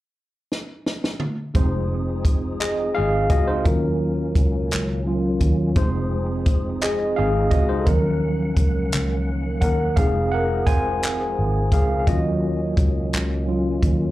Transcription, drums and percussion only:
0.52 snare
0.86 snare
1.04 snare
1.20 mid tom
1.55 kick, closed hi-hat
2.25 kick, closed hi-hat
2.60 clap, closed hi-hat
3.30 kick, closed hi-hat
3.65 kick, closed hi-hat
4.35 kick, closed hi-hat
4.71 clap, closed hi-hat
5.41 kick, closed hi-hat
5.76 kick, closed hi-hat
6.46 kick, closed hi-hat
6.81 clap, closed hi-hat
7.51 kick, closed hi-hat
7.87 kick, closed hi-hat
8.57 kick, closed hi-hat
8.92 clap, closed hi-hat
9.62 kick, closed hi-hat
9.97 kick, closed hi-hat
10.67 kick, closed hi-hat
11.03 clap, closed hi-hat
11.72 kick, closed hi-hat
12.07 kick, closed hi-hat
12.77 kick, closed hi-hat
13.13 clap, closed hi-hat
13.83 kick, closed hi-hat

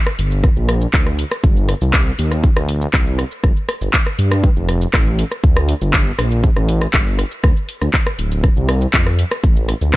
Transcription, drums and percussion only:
0.07 cross-stick, shaker
0.19 open hi-hat
0.32 shaker
0.44 kick, cross-stick, shaker
0.57 shaker
0.69 cross-stick, open hi-hat
0.82 shaker
0.94 kick, clap, shaker
1.07 cross-stick, shaker
1.19 open hi-hat
1.32 cross-stick, shaker
1.44 kick, shaker
1.57 shaker
1.69 cross-stick, open hi-hat
1.82 shaker
1.94 kick, cross-stick, clap, shaker
2.07 shaker
2.19 open hi-hat
2.32 cross-stick, shaker
2.44 kick, shaker
2.57 cross-stick, shaker
2.69 open hi-hat
2.82 shaker
2.94 kick, cross-stick, clap, shaker
3.07 shaker
3.19 cross-stick, open hi-hat
3.31 shaker
3.44 kick, cross-stick, shaker
3.57 shaker
3.69 cross-stick, open hi-hat
3.81 shaker
3.94 kick, clap, shaker
4.07 cross-stick, shaker
4.19 open hi-hat
4.32 cross-stick, shaker
4.44 kick, shaker
4.57 shaker
4.69 cross-stick, open hi-hat
4.82 shaker
4.94 kick, cross-stick, clap, shaker
5.07 shaker
5.19 open hi-hat
5.32 cross-stick, shaker
5.44 kick, shaker
5.57 cross-stick, shaker
5.69 open hi-hat
5.82 shaker
5.94 kick, cross-stick, clap, shaker
6.07 shaker
6.19 cross-stick, open hi-hat
6.32 shaker
6.44 kick, shaker
6.57 cross-stick, shaker
6.69 open hi-hat
6.82 cross-stick, shaker
6.94 kick, clap, shaker
7.07 shaker
7.19 cross-stick, open hi-hat
7.32 shaker
7.44 kick, cross-stick, shaker
7.57 shaker
7.69 open hi-hat
7.82 cross-stick, shaker
7.94 kick, clap, shaker
8.07 cross-stick, shaker
8.19 open hi-hat
8.32 shaker
8.44 kick, cross-stick, shaker
8.57 shaker
8.69 cross-stick, open hi-hat
8.82 shaker
8.94 kick, clap, shaker
9.07 cross-stick, shaker
9.19 open hi-hat
9.31 cross-stick, shaker
9.44 kick, shaker
9.56 shaker
9.69 cross-stick, open hi-hat
9.81 shaker

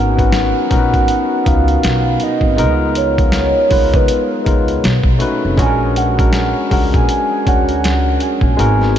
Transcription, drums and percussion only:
0.19 kick, closed hi-hat
0.32 snare, closed hi-hat
0.71 kick, closed hi-hat
0.94 kick, closed hi-hat
1.08 closed hi-hat
1.46 kick, closed hi-hat
1.68 closed hi-hat
1.83 snare, closed hi-hat
2.20 closed hi-hat
2.41 kick
2.58 closed hi-hat
2.95 closed hi-hat
3.18 kick, closed hi-hat
3.32 snare, closed hi-hat
3.71 kick, open hi-hat
3.94 kick, closed hi-hat
4.08 closed hi-hat
4.46 kick, closed hi-hat
4.68 closed hi-hat
4.84 snare, closed hi-hat
5.04 kick
5.20 closed hi-hat
5.58 kick, closed hi-hat
5.96 closed hi-hat
6.19 kick, closed hi-hat
6.33 snare, closed hi-hat
6.71 kick, open hi-hat
6.94 kick, closed hi-hat
7.09 closed hi-hat
7.47 kick, closed hi-hat
7.69 closed hi-hat
7.84 snare, closed hi-hat
8.20 closed hi-hat
8.41 kick
8.59 closed hi-hat
8.81 snare

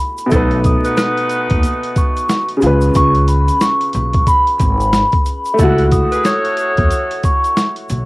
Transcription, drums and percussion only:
0.18 closed hi-hat, shaker
0.31 kick, closed hi-hat, shaker
0.51 closed hi-hat
0.64 kick, closed hi-hat, shaker
0.85 closed hi-hat, shaker
0.97 snare, closed hi-hat, shaker
1.17 closed hi-hat
1.29 closed hi-hat, shaker
1.50 kick, closed hi-hat
1.63 closed hi-hat, shaker
1.83 closed hi-hat
1.96 kick, closed hi-hat, shaker
2.17 closed hi-hat, shaker
2.29 snare, closed hi-hat, shaker
2.49 closed hi-hat
2.62 closed hi-hat, shaker
2.81 closed hi-hat, shaker
2.95 kick, closed hi-hat, shaker
3.15 closed hi-hat
3.28 closed hi-hat, shaker
3.48 closed hi-hat, shaker
3.61 snare, closed hi-hat, shaker
3.81 closed hi-hat
3.93 closed hi-hat, shaker
4.13 kick, closed hi-hat
4.27 kick, closed hi-hat, shaker
4.47 closed hi-hat
4.60 kick, closed hi-hat, shaker
4.81 closed hi-hat, shaker
4.93 snare, closed hi-hat, shaker
5.12 kick, closed hi-hat
5.26 closed hi-hat, shaker
5.45 closed hi-hat, shaker
5.59 kick, closed hi-hat, shaker
5.79 closed hi-hat
5.92 kick, closed hi-hat, shaker
6.12 closed hi-hat, shaker
6.25 snare, closed hi-hat, shaker
6.45 closed hi-hat
6.57 closed hi-hat, shaker
6.77 kick, closed hi-hat
6.91 closed hi-hat, shaker
7.11 closed hi-hat
7.23 kick, closed hi-hat, shaker
7.44 closed hi-hat, shaker
7.57 snare, closed hi-hat, shaker
7.76 closed hi-hat
7.90 closed hi-hat, shaker

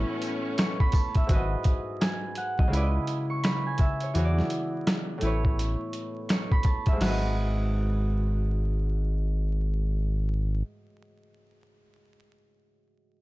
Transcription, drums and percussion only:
0.22 closed hi-hat, tambourine
0.58 snare, closed hi-hat
0.80 kick
0.92 kick, closed hi-hat, tambourine
1.15 kick, closed hi-hat
1.29 kick, closed hi-hat
1.64 kick, closed hi-hat
2.01 snare, closed hi-hat
2.35 closed hi-hat
2.59 kick
2.73 closed hi-hat
3.07 closed hi-hat
3.44 snare, closed hi-hat
3.78 kick, closed hi-hat
4.00 closed hi-hat
4.15 closed hi-hat
4.39 snare
4.50 closed hi-hat
4.87 snare, closed hi-hat
5.21 closed hi-hat
5.45 kick
5.59 closed hi-hat
5.93 closed hi-hat
6.29 snare, closed hi-hat
6.52 kick
6.63 kick, closed hi-hat
6.86 kick, closed hi-hat
7.01 snare, crash

